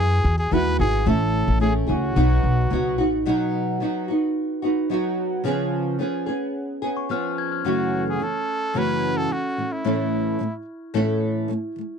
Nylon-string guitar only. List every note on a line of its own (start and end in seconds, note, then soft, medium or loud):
0.00 0.51 B3 soft
0.00 0.52 E4 soft
0.00 0.51 F#4 soft
0.51 0.79 G#3 medium
0.51 0.79 B3 medium
0.51 0.79 E4 medium
0.51 0.77 F#4 medium
0.79 1.06 B3 soft
0.79 1.06 E4 soft
0.79 1.06 F#4 soft
1.06 1.59 A3 medium
1.06 1.60 C#4 medium
1.06 1.60 E4 medium
1.60 1.88 A3 medium
1.60 1.88 C#4 medium
1.60 1.87 E4 medium
1.60 1.86 G#4 medium
1.87 2.16 C#4 soft
1.87 2.16 E4 soft
1.87 2.15 G#4 medium
2.16 2.71 B2 medium
2.16 2.70 F#3 medium
2.16 2.71 B3 medium
2.16 2.72 D#4 medium
2.16 2.73 F#4 medium
2.70 2.98 F#3 medium
2.70 2.98 B3 medium
2.70 2.98 D#4 medium
2.70 2.97 F#4 medium
2.98 3.25 B3 soft
2.98 3.25 D#4 soft
2.98 3.26 F#4 medium
3.26 3.80 B2 medium
3.26 3.79 F#3 medium
3.26 3.81 B3 medium
3.26 3.81 D#4 medium
3.26 3.81 F#4 loud
3.80 4.08 F#3 medium
3.80 4.08 B3 medium
3.80 4.09 D#4 medium
3.80 4.07 F#4 medium
4.08 4.64 B3 soft
4.08 4.62 D#4 soft
4.08 4.61 F#4 soft
4.62 4.89 B3 soft
4.62 4.89 D#4 medium
4.62 4.90 F#4 medium
4.89 5.44 F#3 medium
4.89 5.44 B3 medium
4.89 5.45 D#4 medium
4.89 5.45 F#4 medium
5.44 5.99 C#3 medium
5.44 5.97 F3 medium
5.44 5.98 B3 medium
5.44 5.99 C#4 medium
5.44 5.99 G#4 medium
5.99 6.27 F3 medium
5.99 6.27 B3 medium
5.99 6.26 C#4 medium
5.99 6.25 G#4 medium
6.26 6.83 B3 soft
6.26 6.82 C#4 soft
6.26 6.81 G#4 soft
6.82 7.09 B3 soft
6.82 7.10 C#4 soft
6.82 7.10 G#4 medium
7.09 7.65 F3 medium
7.09 7.65 B3 medium
7.09 7.65 C#4 medium
7.09 7.66 G#4 medium
7.64 8.18 F#2 medium
7.64 8.20 C#3 medium
7.64 8.22 E3 medium
7.64 8.75 A3 medium
7.64 8.75 C#4 medium
7.64 8.20 F#4 medium
8.20 8.42 F#2 medium
8.20 8.42 C#3 medium
8.20 8.43 E3 medium
8.74 9.28 F#2 medium
8.74 9.30 C#3 medium
8.74 9.32 E3 medium
8.74 9.59 A3 medium
8.74 9.85 C#4 medium
8.74 9.30 F#4 medium
9.30 9.52 F#2 medium
9.30 9.52 C#3 medium
9.30 9.53 E3 medium
9.57 9.79 A2 soft
9.57 9.80 E3 soft
9.57 9.80 A3 soft
9.84 10.38 A2 medium
9.84 10.40 E3 medium
9.84 10.40 A3 medium
9.84 10.40 C#4 medium
9.84 10.95 E4 medium
9.84 10.41 A4 medium
10.39 10.61 A2 medium
10.39 10.62 E3 medium
10.39 10.62 A3 medium
10.94 11.47 A2 medium
10.94 11.49 E3 medium
10.94 11.49 A3 medium
10.94 11.50 C#4 medium
10.94 11.99 E4 medium
10.94 11.50 A4 medium
11.48 11.71 A2 medium
11.48 11.72 E3 medium
11.48 11.72 A3 medium
11.76 11.99 E3 soft
11.76 11.99 G#3 soft